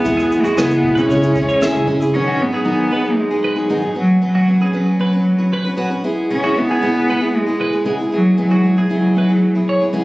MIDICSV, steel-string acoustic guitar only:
0, 0, Header, 1, 2, 480
1, 0, Start_track
1, 0, Key_signature, 4, "minor"
1, 0, Tempo, 520833
1, 51, Time_signature, 4, 2, 24, 8
1, 9255, End_track
2, 0, Start_track
2, 0, Title_t, "Steel-string acoustic guitar"
2, 0, Program_c, 0, 25
2, 38, Note_on_c, 0, 52, 76
2, 39, Note_on_c, 0, 56, 77
2, 43, Note_on_c, 0, 59, 83
2, 43, Note_on_c, 0, 64, 74
2, 47, Note_on_c, 0, 68, 91
2, 389, Note_off_c, 0, 68, 0
2, 399, Note_off_c, 0, 64, 0
2, 400, Note_on_c, 0, 68, 55
2, 402, Note_off_c, 0, 59, 0
2, 405, Note_off_c, 0, 52, 0
2, 406, Note_off_c, 0, 56, 0
2, 410, Note_on_c, 0, 64, 42
2, 413, Note_on_c, 0, 59, 38
2, 521, Note_off_c, 0, 59, 0
2, 521, Note_off_c, 0, 64, 0
2, 524, Note_on_c, 0, 52, 75
2, 526, Note_off_c, 0, 68, 0
2, 528, Note_on_c, 0, 56, 75
2, 532, Note_on_c, 0, 59, 85
2, 532, Note_on_c, 0, 64, 81
2, 536, Note_on_c, 0, 68, 79
2, 887, Note_off_c, 0, 68, 0
2, 888, Note_off_c, 0, 52, 0
2, 890, Note_off_c, 0, 56, 0
2, 892, Note_off_c, 0, 59, 0
2, 892, Note_off_c, 0, 64, 0
2, 898, Note_on_c, 0, 68, 46
2, 903, Note_on_c, 0, 64, 44
2, 911, Note_on_c, 0, 59, 45
2, 1015, Note_off_c, 0, 68, 0
2, 1018, Note_off_c, 0, 64, 0
2, 1022, Note_off_c, 0, 59, 0
2, 1022, Note_on_c, 0, 49, 62
2, 1029, Note_on_c, 0, 61, 71
2, 1030, Note_on_c, 0, 56, 68
2, 1032, Note_on_c, 0, 68, 78
2, 1033, Note_on_c, 0, 64, 76
2, 1125, Note_off_c, 0, 68, 0
2, 1134, Note_off_c, 0, 64, 0
2, 1136, Note_on_c, 0, 68, 62
2, 1137, Note_off_c, 0, 49, 0
2, 1141, Note_off_c, 0, 56, 0
2, 1141, Note_off_c, 0, 61, 0
2, 1145, Note_on_c, 0, 64, 50
2, 1151, Note_on_c, 0, 61, 45
2, 1250, Note_off_c, 0, 61, 0
2, 1255, Note_off_c, 0, 68, 0
2, 1256, Note_on_c, 0, 56, 54
2, 1257, Note_off_c, 0, 64, 0
2, 1261, Note_on_c, 0, 61, 63
2, 1268, Note_on_c, 0, 64, 63
2, 1275, Note_on_c, 0, 68, 73
2, 1476, Note_off_c, 0, 56, 0
2, 1479, Note_off_c, 0, 61, 0
2, 1481, Note_on_c, 0, 49, 93
2, 1482, Note_off_c, 0, 64, 0
2, 1482, Note_off_c, 0, 68, 0
2, 1487, Note_on_c, 0, 56, 79
2, 1490, Note_on_c, 0, 61, 95
2, 1493, Note_on_c, 0, 64, 93
2, 1493, Note_on_c, 0, 68, 93
2, 1712, Note_off_c, 0, 56, 0
2, 1716, Note_off_c, 0, 61, 0
2, 1718, Note_off_c, 0, 64, 0
2, 1723, Note_on_c, 0, 56, 62
2, 1725, Note_off_c, 0, 68, 0
2, 1727, Note_off_c, 0, 49, 0
2, 1727, Note_on_c, 0, 61, 73
2, 1729, Note_on_c, 0, 64, 72
2, 1736, Note_on_c, 0, 68, 70
2, 1835, Note_off_c, 0, 68, 0
2, 1846, Note_on_c, 0, 68, 65
2, 1848, Note_off_c, 0, 56, 0
2, 1850, Note_off_c, 0, 61, 0
2, 1851, Note_off_c, 0, 64, 0
2, 1861, Note_on_c, 0, 64, 56
2, 1864, Note_on_c, 0, 61, 46
2, 1970, Note_off_c, 0, 68, 0
2, 1973, Note_on_c, 0, 44, 68
2, 1976, Note_off_c, 0, 61, 0
2, 1977, Note_off_c, 0, 64, 0
2, 1979, Note_on_c, 0, 51, 67
2, 1980, Note_on_c, 0, 59, 71
2, 1981, Note_on_c, 0, 54, 70
2, 1984, Note_on_c, 0, 63, 68
2, 1985, Note_on_c, 0, 68, 77
2, 2189, Note_off_c, 0, 54, 0
2, 2194, Note_off_c, 0, 59, 0
2, 2198, Note_off_c, 0, 63, 0
2, 2200, Note_on_c, 0, 54, 47
2, 2205, Note_off_c, 0, 68, 0
2, 2205, Note_on_c, 0, 59, 44
2, 2209, Note_on_c, 0, 63, 50
2, 2213, Note_off_c, 0, 44, 0
2, 2216, Note_on_c, 0, 68, 48
2, 2217, Note_off_c, 0, 51, 0
2, 2312, Note_off_c, 0, 68, 0
2, 2320, Note_off_c, 0, 63, 0
2, 2323, Note_off_c, 0, 59, 0
2, 2323, Note_on_c, 0, 68, 49
2, 2327, Note_off_c, 0, 54, 0
2, 2332, Note_on_c, 0, 63, 38
2, 2334, Note_on_c, 0, 59, 37
2, 2341, Note_on_c, 0, 54, 40
2, 2430, Note_off_c, 0, 54, 0
2, 2437, Note_off_c, 0, 59, 0
2, 2437, Note_off_c, 0, 63, 0
2, 2437, Note_on_c, 0, 44, 68
2, 2440, Note_on_c, 0, 51, 67
2, 2441, Note_on_c, 0, 54, 66
2, 2442, Note_off_c, 0, 68, 0
2, 2448, Note_on_c, 0, 59, 64
2, 2448, Note_on_c, 0, 63, 65
2, 2453, Note_on_c, 0, 68, 72
2, 2668, Note_off_c, 0, 54, 0
2, 2678, Note_off_c, 0, 59, 0
2, 2679, Note_on_c, 0, 54, 52
2, 2684, Note_off_c, 0, 63, 0
2, 2686, Note_off_c, 0, 44, 0
2, 2687, Note_off_c, 0, 51, 0
2, 2689, Note_on_c, 0, 59, 51
2, 2690, Note_off_c, 0, 68, 0
2, 2695, Note_on_c, 0, 63, 54
2, 2701, Note_on_c, 0, 68, 55
2, 2794, Note_off_c, 0, 68, 0
2, 2799, Note_off_c, 0, 63, 0
2, 2805, Note_on_c, 0, 68, 48
2, 2806, Note_off_c, 0, 59, 0
2, 2807, Note_off_c, 0, 54, 0
2, 2810, Note_on_c, 0, 63, 44
2, 2817, Note_on_c, 0, 59, 38
2, 2821, Note_on_c, 0, 54, 33
2, 3034, Note_off_c, 0, 68, 0
2, 3040, Note_off_c, 0, 63, 0
2, 3045, Note_on_c, 0, 68, 47
2, 3048, Note_off_c, 0, 59, 0
2, 3051, Note_on_c, 0, 63, 45
2, 3052, Note_off_c, 0, 54, 0
2, 3059, Note_on_c, 0, 59, 42
2, 3063, Note_on_c, 0, 54, 41
2, 3267, Note_off_c, 0, 68, 0
2, 3272, Note_off_c, 0, 63, 0
2, 3277, Note_off_c, 0, 59, 0
2, 3278, Note_on_c, 0, 68, 50
2, 3283, Note_on_c, 0, 63, 44
2, 3285, Note_off_c, 0, 54, 0
2, 3288, Note_on_c, 0, 59, 41
2, 3296, Note_on_c, 0, 54, 40
2, 3397, Note_off_c, 0, 54, 0
2, 3401, Note_off_c, 0, 63, 0
2, 3401, Note_off_c, 0, 68, 0
2, 3402, Note_off_c, 0, 59, 0
2, 3403, Note_on_c, 0, 44, 60
2, 3406, Note_on_c, 0, 51, 66
2, 3408, Note_on_c, 0, 54, 67
2, 3412, Note_on_c, 0, 68, 68
2, 3413, Note_on_c, 0, 59, 71
2, 3413, Note_on_c, 0, 63, 76
2, 3508, Note_off_c, 0, 68, 0
2, 3519, Note_off_c, 0, 63, 0
2, 3519, Note_on_c, 0, 68, 40
2, 3526, Note_off_c, 0, 59, 0
2, 3529, Note_off_c, 0, 44, 0
2, 3530, Note_on_c, 0, 63, 36
2, 3531, Note_off_c, 0, 51, 0
2, 3532, Note_off_c, 0, 54, 0
2, 3537, Note_on_c, 0, 59, 33
2, 3543, Note_on_c, 0, 54, 34
2, 3628, Note_off_c, 0, 59, 0
2, 3635, Note_off_c, 0, 54, 0
2, 3639, Note_on_c, 0, 59, 53
2, 3647, Note_off_c, 0, 63, 0
2, 3647, Note_on_c, 0, 61, 50
2, 3648, Note_off_c, 0, 68, 0
2, 3651, Note_on_c, 0, 66, 55
2, 3655, Note_on_c, 0, 71, 51
2, 3874, Note_off_c, 0, 59, 0
2, 3877, Note_off_c, 0, 61, 0
2, 3883, Note_off_c, 0, 66, 0
2, 3884, Note_off_c, 0, 71, 0
2, 3885, Note_on_c, 0, 59, 68
2, 3888, Note_on_c, 0, 61, 64
2, 3894, Note_on_c, 0, 66, 72
2, 3895, Note_on_c, 0, 71, 81
2, 4115, Note_off_c, 0, 59, 0
2, 4121, Note_off_c, 0, 61, 0
2, 4126, Note_off_c, 0, 66, 0
2, 4127, Note_on_c, 0, 59, 51
2, 4130, Note_off_c, 0, 71, 0
2, 4132, Note_on_c, 0, 61, 53
2, 4137, Note_on_c, 0, 66, 52
2, 4141, Note_on_c, 0, 71, 58
2, 4234, Note_off_c, 0, 71, 0
2, 4242, Note_off_c, 0, 66, 0
2, 4245, Note_on_c, 0, 71, 45
2, 4250, Note_off_c, 0, 61, 0
2, 4251, Note_off_c, 0, 59, 0
2, 4253, Note_on_c, 0, 66, 39
2, 4261, Note_on_c, 0, 61, 39
2, 4355, Note_off_c, 0, 61, 0
2, 4360, Note_off_c, 0, 66, 0
2, 4360, Note_on_c, 0, 59, 67
2, 4364, Note_off_c, 0, 71, 0
2, 4366, Note_on_c, 0, 61, 71
2, 4372, Note_on_c, 0, 66, 62
2, 4375, Note_on_c, 0, 71, 71
2, 4590, Note_off_c, 0, 59, 0
2, 4593, Note_off_c, 0, 61, 0
2, 4601, Note_on_c, 0, 59, 52
2, 4602, Note_off_c, 0, 66, 0
2, 4605, Note_on_c, 0, 61, 51
2, 4606, Note_off_c, 0, 71, 0
2, 4613, Note_on_c, 0, 66, 56
2, 4617, Note_on_c, 0, 71, 51
2, 4713, Note_off_c, 0, 71, 0
2, 4720, Note_off_c, 0, 66, 0
2, 4724, Note_on_c, 0, 71, 51
2, 4729, Note_off_c, 0, 59, 0
2, 4731, Note_off_c, 0, 61, 0
2, 4731, Note_on_c, 0, 66, 44
2, 4740, Note_on_c, 0, 61, 33
2, 4951, Note_off_c, 0, 71, 0
2, 4959, Note_off_c, 0, 66, 0
2, 4962, Note_on_c, 0, 71, 61
2, 4964, Note_off_c, 0, 61, 0
2, 4970, Note_on_c, 0, 66, 49
2, 4975, Note_on_c, 0, 61, 48
2, 5191, Note_off_c, 0, 71, 0
2, 5202, Note_on_c, 0, 71, 61
2, 5206, Note_off_c, 0, 66, 0
2, 5210, Note_off_c, 0, 61, 0
2, 5217, Note_on_c, 0, 66, 55
2, 5221, Note_on_c, 0, 61, 42
2, 5307, Note_off_c, 0, 61, 0
2, 5309, Note_off_c, 0, 66, 0
2, 5312, Note_on_c, 0, 59, 76
2, 5314, Note_off_c, 0, 71, 0
2, 5318, Note_on_c, 0, 61, 78
2, 5320, Note_on_c, 0, 66, 87
2, 5325, Note_on_c, 0, 71, 84
2, 5426, Note_off_c, 0, 71, 0
2, 5434, Note_off_c, 0, 66, 0
2, 5438, Note_on_c, 0, 71, 52
2, 5441, Note_off_c, 0, 61, 0
2, 5444, Note_off_c, 0, 59, 0
2, 5446, Note_on_c, 0, 66, 46
2, 5452, Note_on_c, 0, 61, 40
2, 5562, Note_off_c, 0, 61, 0
2, 5562, Note_on_c, 0, 56, 65
2, 5566, Note_off_c, 0, 66, 0
2, 5566, Note_on_c, 0, 59, 70
2, 5567, Note_off_c, 0, 71, 0
2, 5570, Note_on_c, 0, 64, 65
2, 5572, Note_on_c, 0, 68, 60
2, 5799, Note_off_c, 0, 56, 0
2, 5803, Note_off_c, 0, 64, 0
2, 5805, Note_off_c, 0, 59, 0
2, 5805, Note_off_c, 0, 68, 0
2, 5809, Note_on_c, 0, 49, 70
2, 5810, Note_on_c, 0, 56, 72
2, 5814, Note_on_c, 0, 64, 69
2, 5816, Note_on_c, 0, 59, 77
2, 5816, Note_on_c, 0, 68, 75
2, 5911, Note_off_c, 0, 68, 0
2, 5921, Note_off_c, 0, 64, 0
2, 5922, Note_on_c, 0, 68, 52
2, 5930, Note_off_c, 0, 59, 0
2, 5932, Note_on_c, 0, 64, 43
2, 5933, Note_off_c, 0, 49, 0
2, 5933, Note_off_c, 0, 56, 0
2, 5941, Note_on_c, 0, 59, 38
2, 6039, Note_off_c, 0, 59, 0
2, 6043, Note_on_c, 0, 56, 52
2, 6045, Note_off_c, 0, 64, 0
2, 6049, Note_off_c, 0, 68, 0
2, 6050, Note_on_c, 0, 59, 54
2, 6056, Note_on_c, 0, 64, 59
2, 6063, Note_on_c, 0, 68, 62
2, 6149, Note_off_c, 0, 68, 0
2, 6155, Note_off_c, 0, 64, 0
2, 6160, Note_on_c, 0, 68, 51
2, 6166, Note_on_c, 0, 64, 41
2, 6170, Note_off_c, 0, 56, 0
2, 6170, Note_off_c, 0, 59, 0
2, 6181, Note_on_c, 0, 59, 37
2, 6280, Note_off_c, 0, 59, 0
2, 6282, Note_off_c, 0, 64, 0
2, 6283, Note_off_c, 0, 68, 0
2, 6283, Note_on_c, 0, 49, 64
2, 6290, Note_on_c, 0, 56, 67
2, 6291, Note_on_c, 0, 59, 74
2, 6293, Note_on_c, 0, 64, 80
2, 6294, Note_on_c, 0, 68, 83
2, 6515, Note_off_c, 0, 56, 0
2, 6518, Note_off_c, 0, 59, 0
2, 6522, Note_off_c, 0, 64, 0
2, 6526, Note_on_c, 0, 56, 61
2, 6529, Note_off_c, 0, 68, 0
2, 6529, Note_on_c, 0, 59, 55
2, 6530, Note_off_c, 0, 49, 0
2, 6533, Note_on_c, 0, 64, 58
2, 6540, Note_on_c, 0, 68, 57
2, 6628, Note_off_c, 0, 68, 0
2, 6632, Note_off_c, 0, 64, 0
2, 6639, Note_on_c, 0, 68, 45
2, 6643, Note_off_c, 0, 59, 0
2, 6643, Note_on_c, 0, 64, 46
2, 6651, Note_off_c, 0, 56, 0
2, 6654, Note_on_c, 0, 59, 39
2, 6866, Note_off_c, 0, 68, 0
2, 6873, Note_off_c, 0, 64, 0
2, 6877, Note_on_c, 0, 68, 47
2, 6884, Note_off_c, 0, 59, 0
2, 6884, Note_on_c, 0, 64, 49
2, 6895, Note_on_c, 0, 59, 46
2, 7109, Note_off_c, 0, 68, 0
2, 7114, Note_off_c, 0, 64, 0
2, 7120, Note_on_c, 0, 68, 43
2, 7125, Note_on_c, 0, 64, 45
2, 7126, Note_off_c, 0, 59, 0
2, 7137, Note_on_c, 0, 59, 43
2, 7229, Note_off_c, 0, 59, 0
2, 7231, Note_on_c, 0, 49, 61
2, 7233, Note_off_c, 0, 64, 0
2, 7233, Note_off_c, 0, 68, 0
2, 7239, Note_on_c, 0, 56, 69
2, 7240, Note_on_c, 0, 59, 66
2, 7244, Note_on_c, 0, 64, 73
2, 7244, Note_on_c, 0, 68, 85
2, 7346, Note_off_c, 0, 68, 0
2, 7353, Note_off_c, 0, 64, 0
2, 7357, Note_on_c, 0, 68, 44
2, 7363, Note_off_c, 0, 49, 0
2, 7364, Note_on_c, 0, 64, 34
2, 7365, Note_off_c, 0, 59, 0
2, 7367, Note_off_c, 0, 56, 0
2, 7376, Note_on_c, 0, 59, 36
2, 7473, Note_off_c, 0, 64, 0
2, 7473, Note_on_c, 0, 56, 48
2, 7474, Note_off_c, 0, 59, 0
2, 7485, Note_on_c, 0, 59, 57
2, 7485, Note_on_c, 0, 64, 53
2, 7487, Note_off_c, 0, 68, 0
2, 7497, Note_on_c, 0, 68, 64
2, 7711, Note_off_c, 0, 64, 0
2, 7712, Note_off_c, 0, 56, 0
2, 7714, Note_off_c, 0, 59, 0
2, 7714, Note_off_c, 0, 68, 0
2, 7717, Note_on_c, 0, 49, 71
2, 7723, Note_on_c, 0, 56, 75
2, 7723, Note_on_c, 0, 64, 74
2, 7725, Note_on_c, 0, 59, 74
2, 7725, Note_on_c, 0, 68, 68
2, 7827, Note_off_c, 0, 68, 0
2, 7834, Note_off_c, 0, 64, 0
2, 7838, Note_on_c, 0, 68, 44
2, 7844, Note_off_c, 0, 59, 0
2, 7845, Note_on_c, 0, 64, 40
2, 7846, Note_off_c, 0, 49, 0
2, 7849, Note_off_c, 0, 56, 0
2, 7855, Note_on_c, 0, 59, 35
2, 7957, Note_off_c, 0, 59, 0
2, 7958, Note_off_c, 0, 64, 0
2, 7958, Note_on_c, 0, 56, 50
2, 7966, Note_off_c, 0, 68, 0
2, 7968, Note_on_c, 0, 59, 55
2, 7969, Note_on_c, 0, 64, 47
2, 7976, Note_on_c, 0, 68, 54
2, 8065, Note_off_c, 0, 68, 0
2, 8076, Note_off_c, 0, 64, 0
2, 8076, Note_on_c, 0, 68, 47
2, 8084, Note_off_c, 0, 59, 0
2, 8086, Note_off_c, 0, 56, 0
2, 8087, Note_on_c, 0, 64, 41
2, 8095, Note_on_c, 0, 59, 39
2, 8195, Note_off_c, 0, 59, 0
2, 8197, Note_off_c, 0, 64, 0
2, 8197, Note_on_c, 0, 49, 70
2, 8198, Note_off_c, 0, 68, 0
2, 8204, Note_on_c, 0, 56, 67
2, 8206, Note_on_c, 0, 59, 65
2, 8208, Note_on_c, 0, 64, 68
2, 8209, Note_on_c, 0, 68, 81
2, 8425, Note_off_c, 0, 56, 0
2, 8431, Note_off_c, 0, 59, 0
2, 8436, Note_off_c, 0, 64, 0
2, 8436, Note_on_c, 0, 56, 49
2, 8440, Note_off_c, 0, 68, 0
2, 8442, Note_on_c, 0, 59, 45
2, 8446, Note_off_c, 0, 49, 0
2, 8447, Note_on_c, 0, 64, 59
2, 8451, Note_on_c, 0, 68, 67
2, 8542, Note_off_c, 0, 68, 0
2, 8547, Note_off_c, 0, 64, 0
2, 8553, Note_on_c, 0, 68, 43
2, 8558, Note_on_c, 0, 64, 40
2, 8559, Note_off_c, 0, 59, 0
2, 8565, Note_off_c, 0, 56, 0
2, 8570, Note_on_c, 0, 59, 40
2, 8788, Note_off_c, 0, 68, 0
2, 8796, Note_off_c, 0, 64, 0
2, 8799, Note_on_c, 0, 68, 55
2, 8804, Note_off_c, 0, 59, 0
2, 8807, Note_on_c, 0, 64, 50
2, 8815, Note_on_c, 0, 59, 39
2, 9024, Note_off_c, 0, 68, 0
2, 9035, Note_off_c, 0, 64, 0
2, 9035, Note_on_c, 0, 68, 49
2, 9043, Note_off_c, 0, 59, 0
2, 9046, Note_on_c, 0, 64, 54
2, 9054, Note_on_c, 0, 59, 47
2, 9144, Note_off_c, 0, 59, 0
2, 9144, Note_off_c, 0, 64, 0
2, 9148, Note_on_c, 0, 49, 77
2, 9150, Note_off_c, 0, 68, 0
2, 9151, Note_on_c, 0, 56, 80
2, 9155, Note_on_c, 0, 59, 78
2, 9156, Note_on_c, 0, 64, 89
2, 9161, Note_on_c, 0, 68, 84
2, 9255, Note_off_c, 0, 49, 0
2, 9255, Note_off_c, 0, 56, 0
2, 9255, Note_off_c, 0, 59, 0
2, 9255, Note_off_c, 0, 64, 0
2, 9255, Note_off_c, 0, 68, 0
2, 9255, End_track
0, 0, End_of_file